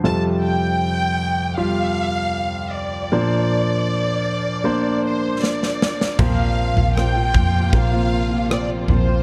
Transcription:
<<
  \new Staff \with { instrumentName = "Violin section" } { \time 4/4 \key bes \lydian \tempo 4 = 78 a''8 g''4. f''4. d''8~ | d''2~ d''8 c''8 d''4 | f''4 g''4 f''4 d''8 c''8 | }
  \new Staff \with { instrumentName = "Grand piano" } { \time 4/4 \key bes \lydian <g f' a'>2 <g f' g'>2 | <bes d' c''>2 <bes d' c''>2 | <bes f' c''>2 <bes f' c''>2 | }
  \new Staff \with { instrumentName = "Grand piano" } { \clef bass \time 4/4 \key bes \lydian <f, c>1 | <bes, f>1 | <bes, f>4. r2 r8 | }
  \new Staff \with { instrumentName = "Nylon-string guitar" } { \time 4/4 \key bes \lydian r1 | r1 | <bes, f bes c' f'>8. <bes c' f'>16 <bes, f bes c' f'>16 <bes c' f'>16 <f bes c' f'>8. <bes c' f'>8 <bes c' f'>16 <bes, f bes c' f'>8 <f bes c' f'>16 <bes c' f'>16 | }
  \new Staff \with { instrumentName = "String section" } { \clef bass \time 4/4 \key bes \lydian r1 | r1 | <c f bes f'>1 | }
  \new Staff \with { instrumentName = "Fingered electric bass" } { \clef bass \time 4/4 \key bes \lydian r1 | r1 | bes,,8. bes,,8. f,8 bes,,4. bes,,8 | }
  \new DrumStaff \with { instrumentName = "Drums" } \drummode { \time 4/4 r4 r4 r4 r4 | r4 r4 r4 sn16 sn16 sn16 sn16 | <cymc bd tomfh>8. tomfh16 ss8 <bd tomfh>8 bd4 ss8 tomfh8 | }
>>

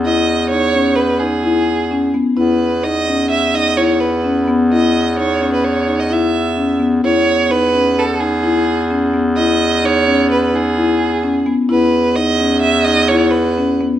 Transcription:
<<
  \new Staff \with { instrumentName = "Violin" } { \time 5/4 \key cis \minor \tempo 4 = 129 dis''4 cis''4 b'8 gis'2 r8 | b'4 dis''4 e''8 dis''8 cis''8 b'4 r8 | dis''4 cis''8. b'16 cis''8. dis''16 e''4. r8 | cis''4 b'4 a'8 gis'2 r8 |
dis''4 cis''4 b'8 gis'2 r8 | b'4 dis''4 e''8 dis''8 cis''8 b'4 r8 | }
  \new Staff \with { instrumentName = "Marimba" } { \time 5/4 \key cis \minor e'4 dis'8 cis'4 dis'8 e'4 cis'8 b8 | e'4 dis'8 cis'4 dis'8 e'4 cis'8 b8 | e'4 dis'8 cis'4 dis'8 e'4 cis'8 b8 | e'4 dis'8 cis'4 dis'8 e'4 cis'8 b8 |
e'4 dis'8 cis'4 dis'8 e'4 cis'8 b8 | e'4 dis'8 cis'4 dis'8 e'4 cis'8 b8 | }
  \new Staff \with { instrumentName = "Bass clarinet" } { \clef bass \time 5/4 \key cis \minor e,1~ e,4 | e,1~ e,4~ | e,1~ e,4 | e,1~ e,4~ |
e,1~ e,4 | e,1~ e,4 | }
>>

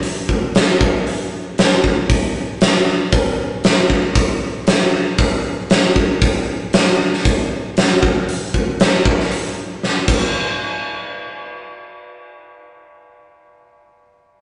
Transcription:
\new DrumStaff \with { instrumentName = "Drums" } \drummode { \time 4/4 \tempo 4 = 116 hho8 bd8 <hho sn>8 bd8 hho4 <hho sn>8 bd8 | <hho bd>4 <hho sn>4 <hho bd>4 <hho sn>8 bd8 | <hho bd>4 <hho sn>4 <hho bd>4 <hho sn>8 bd8 | <hho bd>4 <hho sn>8. sn16 <hho bd>4 <hho sn>8 bd8 |
hho8 bd8 <hho sn>8 bd16 sn16 hho4 sn8 <cymc bd>8 | r4 r4 r4 r4 | r4 r4 r4 r4 | }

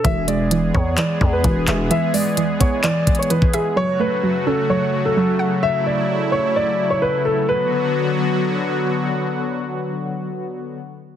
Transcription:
<<
  \new Staff \with { instrumentName = "Grand piano" } { \time 4/4 \key b \dorian \tempo 4 = 129 e''8 d''4 cis''8 d''8. b'4~ b'16 | e''8 d''4 cis''8 d''8. cis''16 b'8 gis'8 | cis''8 b'4 a'8 cis''8. a'4~ a'16 | e''8 d''4 cis''8 d''8. cis''16 b'8 a'8 |
b'2. r4 | r1 | }
  \new Staff \with { instrumentName = "Analog synth pad" } { \time 4/4 \key b \dorian << { gis'1~ | gis'1 | fis'1 | e'1 |
<d fis b fis'>1~ | <d fis b fis'>1 | } \\ { <e gis b>1~ | <e gis b>1 | <cis fis a>1~ | <cis fis a>1 |
r1 | r1 | } >> }
  \new Staff \with { instrumentName = "Synth pluck" } { \clef bass \time 4/4 \key b \dorian e8 gis8 e8 b8 e4 e8 e''8 | e8 gis8 e8 b8 e4 e8 e''8 | fis8 a8 fis8 cis'8 fis4 fis8 fis''8~ | fis''2 r2 |
r1 | r1 | }
  \new Staff \with { instrumentName = "808-style bass" } { \clef bass \time 4/4 \key b \dorian e,,4. e,8 r8 e,8 e,,8 e,,8 | r1 | r1 | r1 |
r1 | r1 | }
  \new DrumStaff \with { instrumentName = "Drums" } \drummode { \time 4/4 <hh bd>8 hh8 hh8 bd8 <hc hh>8 bd8 <hh bd>8 <hc hh>8 | hh8 hho8 hh8 <hh bd>8 \tuplet 3/2 { <hc hh>16 r16 r16 <hh bd>16 hh16 hh16 } hh16 bd16 hh8 | r4 r4 r4 r4 | r4 r4 r4 r4 |
r4 r4 r4 r4 | r4 r4 r4 r4 | }
>>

